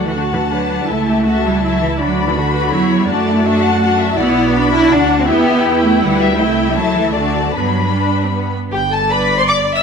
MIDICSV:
0, 0, Header, 1, 6, 480
1, 0, Start_track
1, 0, Key_signature, 2, "major"
1, 0, Tempo, 368098
1, 1162, Time_signature, 3, 2, 24, 8
1, 5466, Key_signature, 1, "major"
1, 8341, Tempo, 389358
1, 11221, Tempo, 372671
1, 12633, End_track
2, 0, Start_track
2, 0, Title_t, "Violin section"
2, 0, Program_c, 0, 48
2, 0, Note_on_c, 0, 78, 34
2, 152, Note_off_c, 0, 78, 0
2, 190, Note_on_c, 0, 81, 44
2, 1631, Note_off_c, 0, 81, 0
2, 1646, Note_on_c, 0, 81, 39
2, 2586, Note_off_c, 0, 81, 0
2, 2607, Note_on_c, 0, 83, 47
2, 4027, Note_on_c, 0, 81, 42
2, 4038, Note_off_c, 0, 83, 0
2, 4492, Note_off_c, 0, 81, 0
2, 4508, Note_on_c, 0, 81, 54
2, 5441, Note_off_c, 0, 81, 0
2, 5464, Note_on_c, 0, 78, 53
2, 5926, Note_off_c, 0, 78, 0
2, 5935, Note_on_c, 0, 83, 54
2, 6405, Note_off_c, 0, 83, 0
2, 6419, Note_on_c, 0, 81, 51
2, 6889, Note_on_c, 0, 79, 57
2, 6896, Note_off_c, 0, 81, 0
2, 7834, Note_off_c, 0, 79, 0
2, 7853, Note_on_c, 0, 78, 62
2, 8095, Note_on_c, 0, 76, 61
2, 8096, Note_off_c, 0, 78, 0
2, 8339, Note_off_c, 0, 76, 0
2, 8339, Note_on_c, 0, 79, 52
2, 8803, Note_off_c, 0, 79, 0
2, 8803, Note_on_c, 0, 81, 53
2, 9252, Note_off_c, 0, 81, 0
2, 9267, Note_on_c, 0, 81, 48
2, 9747, Note_off_c, 0, 81, 0
2, 9762, Note_on_c, 0, 83, 45
2, 10981, Note_off_c, 0, 83, 0
2, 11243, Note_on_c, 0, 79, 69
2, 11458, Note_off_c, 0, 79, 0
2, 11464, Note_on_c, 0, 81, 64
2, 11703, Note_off_c, 0, 81, 0
2, 11714, Note_on_c, 0, 83, 72
2, 12065, Note_off_c, 0, 83, 0
2, 12069, Note_on_c, 0, 84, 69
2, 12115, Note_off_c, 0, 84, 0
2, 12182, Note_on_c, 0, 86, 75
2, 12285, Note_off_c, 0, 86, 0
2, 12549, Note_on_c, 0, 88, 62
2, 12595, Note_off_c, 0, 88, 0
2, 12633, End_track
3, 0, Start_track
3, 0, Title_t, "Violin section"
3, 0, Program_c, 1, 48
3, 0, Note_on_c, 1, 69, 30
3, 0, Note_on_c, 1, 74, 31
3, 157, Note_off_c, 1, 74, 0
3, 158, Note_off_c, 1, 69, 0
3, 203, Note_on_c, 1, 66, 35
3, 205, Note_on_c, 1, 78, 36
3, 677, Note_on_c, 1, 71, 35
3, 682, Note_off_c, 1, 66, 0
3, 1160, Note_on_c, 1, 69, 33
3, 1160, Note_on_c, 1, 76, 34
3, 1163, Note_off_c, 1, 71, 0
3, 1170, Note_off_c, 1, 78, 0
3, 1396, Note_on_c, 1, 67, 34
3, 1403, Note_off_c, 1, 69, 0
3, 1634, Note_off_c, 1, 76, 0
3, 1642, Note_off_c, 1, 67, 0
3, 1649, Note_on_c, 1, 76, 41
3, 1651, Note_on_c, 1, 66, 43
3, 1886, Note_off_c, 1, 66, 0
3, 1906, Note_on_c, 1, 64, 40
3, 2120, Note_off_c, 1, 76, 0
3, 2156, Note_on_c, 1, 76, 39
3, 2600, Note_off_c, 1, 64, 0
3, 2607, Note_on_c, 1, 66, 40
3, 2610, Note_off_c, 1, 76, 0
3, 2615, Note_on_c, 1, 74, 38
3, 3076, Note_off_c, 1, 74, 0
3, 3104, Note_on_c, 1, 69, 46
3, 3327, Note_on_c, 1, 71, 46
3, 3331, Note_off_c, 1, 69, 0
3, 3557, Note_off_c, 1, 71, 0
3, 3568, Note_on_c, 1, 73, 46
3, 4015, Note_off_c, 1, 66, 0
3, 4027, Note_on_c, 1, 74, 44
3, 4030, Note_on_c, 1, 66, 46
3, 4033, Note_off_c, 1, 73, 0
3, 4272, Note_off_c, 1, 66, 0
3, 4277, Note_on_c, 1, 64, 51
3, 4517, Note_off_c, 1, 74, 0
3, 4520, Note_off_c, 1, 64, 0
3, 4525, Note_on_c, 1, 62, 48
3, 4525, Note_on_c, 1, 76, 53
3, 4758, Note_on_c, 1, 78, 56
3, 4763, Note_off_c, 1, 76, 0
3, 4975, Note_off_c, 1, 62, 0
3, 4979, Note_off_c, 1, 78, 0
3, 4991, Note_on_c, 1, 62, 49
3, 4995, Note_on_c, 1, 78, 54
3, 5226, Note_off_c, 1, 78, 0
3, 5238, Note_on_c, 1, 76, 58
3, 5448, Note_on_c, 1, 74, 53
3, 5454, Note_off_c, 1, 62, 0
3, 5457, Note_on_c, 1, 66, 52
3, 5469, Note_off_c, 1, 76, 0
3, 5553, Note_off_c, 1, 66, 0
3, 5708, Note_on_c, 1, 66, 51
3, 6399, Note_on_c, 1, 78, 52
3, 6407, Note_off_c, 1, 74, 0
3, 6874, Note_off_c, 1, 66, 0
3, 6876, Note_off_c, 1, 78, 0
3, 6880, Note_on_c, 1, 76, 49
3, 6892, Note_on_c, 1, 67, 54
3, 7367, Note_off_c, 1, 76, 0
3, 7391, Note_on_c, 1, 71, 54
3, 7838, Note_off_c, 1, 71, 0
3, 7848, Note_off_c, 1, 67, 0
3, 7854, Note_on_c, 1, 71, 58
3, 7864, Note_on_c, 1, 67, 55
3, 8330, Note_off_c, 1, 71, 0
3, 8335, Note_off_c, 1, 67, 0
3, 8336, Note_on_c, 1, 64, 53
3, 8342, Note_on_c, 1, 76, 52
3, 9266, Note_on_c, 1, 66, 48
3, 9269, Note_on_c, 1, 74, 49
3, 9276, Note_off_c, 1, 64, 0
3, 9279, Note_off_c, 1, 76, 0
3, 9738, Note_on_c, 1, 62, 45
3, 9739, Note_on_c, 1, 71, 41
3, 9746, Note_off_c, 1, 66, 0
3, 9758, Note_off_c, 1, 74, 0
3, 10969, Note_off_c, 1, 62, 0
3, 10969, Note_off_c, 1, 71, 0
3, 11212, Note_on_c, 1, 67, 58
3, 11311, Note_off_c, 1, 67, 0
3, 11452, Note_on_c, 1, 69, 55
3, 11692, Note_off_c, 1, 69, 0
3, 11714, Note_on_c, 1, 71, 62
3, 12060, Note_on_c, 1, 72, 58
3, 12066, Note_off_c, 1, 71, 0
3, 12168, Note_on_c, 1, 74, 68
3, 12177, Note_off_c, 1, 72, 0
3, 12526, Note_off_c, 1, 74, 0
3, 12534, Note_on_c, 1, 76, 64
3, 12633, Note_off_c, 1, 76, 0
3, 12633, End_track
4, 0, Start_track
4, 0, Title_t, "Viola section"
4, 0, Program_c, 2, 48
4, 0, Note_on_c, 2, 66, 45
4, 624, Note_off_c, 2, 66, 0
4, 675, Note_on_c, 2, 62, 46
4, 1156, Note_on_c, 2, 64, 41
4, 1162, Note_off_c, 2, 62, 0
4, 1621, Note_on_c, 2, 66, 46
4, 1644, Note_off_c, 2, 64, 0
4, 2115, Note_off_c, 2, 66, 0
4, 2129, Note_on_c, 2, 64, 47
4, 2596, Note_off_c, 2, 64, 0
4, 2612, Note_on_c, 2, 62, 49
4, 3077, Note_on_c, 2, 66, 54
4, 3085, Note_off_c, 2, 62, 0
4, 3547, Note_on_c, 2, 64, 52
4, 3556, Note_off_c, 2, 66, 0
4, 4019, Note_on_c, 2, 62, 55
4, 4022, Note_off_c, 2, 64, 0
4, 4494, Note_on_c, 2, 66, 66
4, 4503, Note_off_c, 2, 62, 0
4, 5434, Note_off_c, 2, 66, 0
4, 5456, Note_on_c, 2, 64, 68
4, 5923, Note_off_c, 2, 64, 0
4, 5931, Note_on_c, 2, 62, 69
4, 6872, Note_off_c, 2, 62, 0
4, 6884, Note_on_c, 2, 64, 73
4, 8306, Note_off_c, 2, 64, 0
4, 8341, Note_on_c, 2, 64, 65
4, 8795, Note_off_c, 2, 64, 0
4, 8801, Note_on_c, 2, 57, 58
4, 9761, Note_off_c, 2, 57, 0
4, 9769, Note_on_c, 2, 59, 45
4, 10197, Note_off_c, 2, 59, 0
4, 10259, Note_on_c, 2, 62, 55
4, 10594, Note_off_c, 2, 62, 0
4, 10628, Note_on_c, 2, 60, 45
4, 10738, Note_on_c, 2, 59, 45
4, 10743, Note_off_c, 2, 60, 0
4, 11211, Note_off_c, 2, 59, 0
4, 11707, Note_on_c, 2, 74, 63
4, 12610, Note_off_c, 2, 74, 0
4, 12633, End_track
5, 0, Start_track
5, 0, Title_t, "Cello section"
5, 0, Program_c, 3, 48
5, 80, Note_on_c, 3, 52, 42
5, 193, Note_off_c, 3, 52, 0
5, 199, Note_on_c, 3, 50, 51
5, 295, Note_off_c, 3, 50, 0
5, 439, Note_on_c, 3, 52, 42
5, 535, Note_off_c, 3, 52, 0
5, 678, Note_on_c, 3, 54, 51
5, 1034, Note_off_c, 3, 54, 0
5, 1055, Note_on_c, 3, 55, 50
5, 1167, Note_on_c, 3, 57, 60
5, 1169, Note_off_c, 3, 55, 0
5, 1890, Note_on_c, 3, 55, 56
5, 1891, Note_off_c, 3, 57, 0
5, 2129, Note_off_c, 3, 55, 0
5, 2129, Note_on_c, 3, 54, 63
5, 2368, Note_off_c, 3, 54, 0
5, 2372, Note_on_c, 3, 52, 53
5, 2466, Note_off_c, 3, 52, 0
5, 2593, Note_on_c, 3, 54, 57
5, 2949, Note_off_c, 3, 54, 0
5, 2956, Note_on_c, 3, 52, 52
5, 3005, Note_off_c, 3, 52, 0
5, 3062, Note_on_c, 3, 50, 62
5, 3539, Note_off_c, 3, 50, 0
5, 3547, Note_on_c, 3, 54, 66
5, 3911, Note_off_c, 3, 54, 0
5, 3918, Note_on_c, 3, 55, 56
5, 4029, Note_on_c, 3, 57, 67
5, 4038, Note_off_c, 3, 55, 0
5, 5228, Note_off_c, 3, 57, 0
5, 5460, Note_on_c, 3, 59, 78
5, 6123, Note_off_c, 3, 59, 0
5, 6172, Note_on_c, 3, 64, 84
5, 6414, Note_off_c, 3, 64, 0
5, 6415, Note_on_c, 3, 62, 75
5, 6775, Note_off_c, 3, 62, 0
5, 6776, Note_on_c, 3, 60, 67
5, 6895, Note_off_c, 3, 60, 0
5, 6896, Note_on_c, 3, 59, 86
5, 7601, Note_off_c, 3, 59, 0
5, 7608, Note_on_c, 3, 57, 70
5, 7847, Note_off_c, 3, 57, 0
5, 7852, Note_on_c, 3, 55, 80
5, 8330, Note_on_c, 3, 57, 74
5, 8339, Note_off_c, 3, 55, 0
5, 8682, Note_off_c, 3, 57, 0
5, 8687, Note_on_c, 3, 55, 66
5, 8796, Note_on_c, 3, 54, 78
5, 8804, Note_off_c, 3, 55, 0
5, 9029, Note_on_c, 3, 52, 68
5, 9036, Note_off_c, 3, 54, 0
5, 9262, Note_on_c, 3, 50, 63
5, 9273, Note_off_c, 3, 52, 0
5, 9625, Note_off_c, 3, 50, 0
5, 9627, Note_on_c, 3, 54, 55
5, 9732, Note_off_c, 3, 54, 0
5, 9746, Note_on_c, 3, 54, 69
5, 10233, Note_off_c, 3, 54, 0
5, 10241, Note_on_c, 3, 55, 57
5, 10732, Note_off_c, 3, 55, 0
5, 11212, Note_on_c, 3, 43, 54
5, 12604, Note_off_c, 3, 43, 0
5, 12633, End_track
6, 0, Start_track
6, 0, Title_t, "Double bass section"
6, 0, Program_c, 4, 48
6, 0, Note_on_c, 4, 38, 38
6, 1112, Note_off_c, 4, 38, 0
6, 1161, Note_on_c, 4, 37, 42
6, 2599, Note_on_c, 4, 38, 43
6, 2605, Note_off_c, 4, 37, 0
6, 3554, Note_off_c, 4, 38, 0
6, 3560, Note_on_c, 4, 40, 45
6, 4023, Note_on_c, 4, 42, 52
6, 4038, Note_off_c, 4, 40, 0
6, 5460, Note_off_c, 4, 42, 0
6, 5467, Note_on_c, 4, 35, 54
6, 6416, Note_off_c, 4, 35, 0
6, 6428, Note_on_c, 4, 38, 57
6, 6897, Note_on_c, 4, 40, 59
6, 6900, Note_off_c, 4, 38, 0
6, 7854, Note_on_c, 4, 38, 53
6, 7857, Note_off_c, 4, 40, 0
6, 8330, Note_off_c, 4, 38, 0
6, 8346, Note_on_c, 4, 36, 56
6, 8802, Note_on_c, 4, 37, 52
6, 8806, Note_off_c, 4, 36, 0
6, 9275, Note_on_c, 4, 38, 51
6, 9278, Note_off_c, 4, 37, 0
6, 9760, Note_off_c, 4, 38, 0
6, 9765, Note_on_c, 4, 43, 50
6, 10958, Note_off_c, 4, 43, 0
6, 11216, Note_on_c, 4, 31, 57
6, 12606, Note_off_c, 4, 31, 0
6, 12633, End_track
0, 0, End_of_file